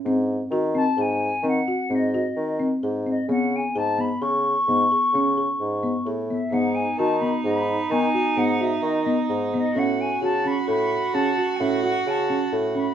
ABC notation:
X:1
M:7/4
L:1/16
Q:1/4=130
K:G#phr
V:1 name="Flute"
z6 a2 g4 f4 d6 z4 d2 | f2 g2 a2 b2 c'16 z2 e2 | f2 g2 a2 b2 b4 g4 f2 e2 d4 z2 d2 | f2 g2 a2 b2 b4 a3- a/2 f/2 e2 f2 a4 z2 b2 |]
V:2 name="Cello"
z24 z4 | z24 z4 | D24- D4 | F24- F4 |]
V:3 name="Marimba"
^B,4 F2 B,2 G4 B,2 F2 B,2 F4 B,2 G2 B,2 | B,4 G2 B,2 G4 B,2 G2 C2 G4 B,2 G2 B,2 | B,4 F2 B,2 G4 B,2 F2 B,2 F4 B,2 G2 B,2 | C4 F2 C2 A4 C2 F2 C2 F4 C2 A2 C2 |]
V:4 name="Bassoon" clef=bass
G,,4 D,4 G,,4 D,2 z2 G,,4 D,4 G,,4 | C,4 G,,4 C,4 G,,2 z2 C,4 G,,4 A,,4 | G,,4 D,4 G,,4 D,2 z2 G,,4 D,4 G,,4 | A,,4 C,4 A,,4 C,2 z2 A,,4 C,4 A,,4 |]